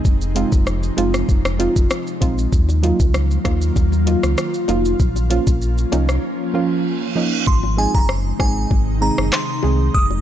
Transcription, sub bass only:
0.05 0.45 F1 loud
0.52 0.91 F1 medium
0.98 1.24 F#1 medium
1.29 1.69 F1 loud
1.76 1.88 F1 medium
2.22 2.48 A#1 medium
2.53 2.92 D#2 loud
3.00 3.38 C#2 medium
3.45 3.71 D#2 medium
3.76 4.16 D#2 loud
4.23 4.35 C#2 loud
4.68 4.95 F1 medium
5.00 5.40 A#1 loud
5.47 5.85 A#1 medium
5.93 6.19 C2 medium
7.47 7.87 G#1 loud
7.95 8.33 F#1 medium
8.40 8.66 G#1 medium
8.71 9.11 G#1 loud
9.18 9.30 F#1 loud
9.64 9.90 C2 medium
9.95 10.21 F1 loud

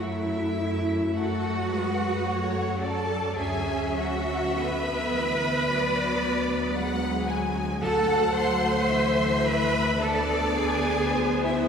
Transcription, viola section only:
0.00 1.12 F#3 medium
0.00 1.12 A3 medium
1.16 2.25 F#3 medium
1.16 1.72 A3 medium
1.71 2.26 G#3 medium
2.26 3.36 F#3 medium
2.26 2.82 A3 medium
2.81 4.57 C#4 medium
3.38 4.58 F#3 medium
4.60 5.17 D3 medium
4.60 5.69 B3 medium
5.17 5.70 E3 medium
5.70 6.72 F#3 medium
5.70 6.72 B3 medium
6.74 7.81 F#3 medium
6.74 7.82 G#3 medium
7.81 8.88 F#3 medium
7.81 9.96 A3 medium
8.91 10.00 E3 medium
10.01 11.15 D3 medium
10.01 11.68 B3 medium
11.16 11.68 F#3 medium

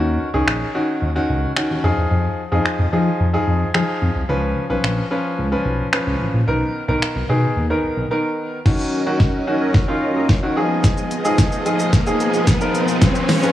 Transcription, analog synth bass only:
0.00 0.18 D#2 loud
0.34 0.42 C#2 medium
0.47 0.64 A#1 loud
1.02 1.19 D#2 loud
1.29 1.46 C#2 medium
1.70 1.79 D#2 medium
1.84 1.92 F2 loud
1.97 2.06 E2 medium
2.11 2.28 F2 loud
2.52 2.60 F2 loud
2.79 2.88 F2 loud
2.93 3.10 F3 medium
3.20 3.37 F2 loud
3.47 3.64 F2 medium
3.75 3.83 F3 loud
4.02 4.10 F2 loud
4.16 4.24 C2 medium
4.29 4.55 C#2 loud
4.70 4.79 B1 medium
4.84 5.01 A#1 medium
5.38 5.55 C#2 medium
5.66 5.82 B1 medium
6.07 6.15 C#2 loud
6.20 6.29 A1 medium
6.34 6.42 A#1 medium
6.47 6.64 B1 loud
6.88 6.97 B1 medium
7.16 7.24 B1 medium
7.29 7.46 B2 medium
7.56 7.73 D#2 loud
7.84 7.89 B1 soft
7.97 8.06 B1 medium

